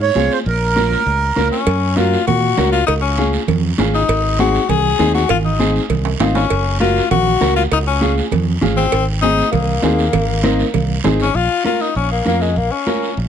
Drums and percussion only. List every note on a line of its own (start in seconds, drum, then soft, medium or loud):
0.16 high conga medium
0.16 short guiro medium
0.31 short guiro medium
0.46 long guiro medium
0.77 high conga medium
0.77 short guiro medium
0.91 high conga medium
0.91 short guiro medium
1.07 long guiro medium
1.36 high conga medium
1.36 short guiro medium
1.52 short guiro medium
1.67 cowbell loud
1.67 long guiro medium
1.97 high conga medium
1.97 short guiro medium
2.13 short guiro medium
2.27 cowbell medium
2.27 high conga soft
2.27 low conga medium
2.27 long guiro medium
2.58 high conga medium
2.58 low timbale medium
2.58 short guiro medium
2.73 short guiro medium
2.88 cowbell loud
2.88 high conga soft
2.88 long guiro medium
3.18 high conga medium
3.18 short guiro medium
3.33 short guiro medium
3.48 cowbell medium
3.48 high conga soft
3.48 low conga medium
3.48 long guiro medium
3.78 high conga medium
3.78 low timbale medium
3.78 short guiro medium
3.94 short guiro medium
4.09 cowbell loud
4.09 high conga soft
4.09 long guiro medium
4.39 high conga medium
4.39 short guiro medium
4.54 short guiro medium
4.69 cowbell medium
4.69 high conga soft
4.69 low conga medium
4.69 long guiro medium
4.99 high conga medium
4.99 low timbale medium
4.99 short guiro medium
5.14 short guiro medium
5.29 cowbell loud
5.29 high conga soft
5.29 low conga medium
5.29 long guiro medium
5.60 high conga medium
5.60 short guiro medium
5.76 short guiro medium
5.90 cowbell medium
5.90 high conga soft
5.90 low conga medium
5.90 long guiro medium
6.05 high timbale medium
6.20 high conga medium
6.20 high timbale medium
6.20 short guiro medium
6.35 low timbale medium
6.35 short guiro medium
6.50 cowbell loud
6.50 high conga soft
6.50 long guiro medium
6.81 high conga medium
6.81 short guiro medium
6.96 short guiro medium
7.11 cowbell medium
7.11 high conga soft
7.11 low conga medium
7.11 long guiro medium
7.41 high conga medium
7.41 low timbale medium
7.41 short guiro medium
7.56 short guiro medium
7.72 cowbell medium
7.72 long guiro medium
8.02 high conga medium
8.02 short guiro medium
8.17 short guiro medium
8.31 cowbell medium
8.31 high conga soft
8.31 low conga medium
8.31 long guiro medium
8.62 high conga medium
8.62 low conga medium
8.62 short guiro medium
8.77 short guiro medium
8.92 cowbell loud
8.92 long guiro medium
9.23 high conga medium
9.23 short guiro medium
9.38 short guiro medium
9.52 cowbell medium
9.52 high conga soft
9.52 low conga medium
9.52 long guiro medium
9.82 high conga medium
9.82 low timbale medium
9.82 short guiro medium
9.98 short guiro medium
10.13 cowbell loud
10.13 high conga soft
10.13 low conga medium
10.13 long guiro medium
10.43 high conga medium
10.43 short guiro medium
10.59 short guiro medium
10.74 cowbell medium
10.74 high conga soft
10.74 low conga medium
10.74 long guiro medium
11.04 high conga medium
11.04 low conga medium
11.04 low timbale medium
11.04 short guiro medium
11.20 short guiro medium
11.35 long guiro medium
11.65 high conga medium
11.65 short guiro medium
11.80 short guiro medium
11.95 long guiro medium
12.26 high conga medium
12.26 short guiro medium
12.41 short guiro medium
12.56 long guiro medium
12.87 high conga medium
12.87 short guiro medium
13.03 short guiro medium
13.17 long guiro medium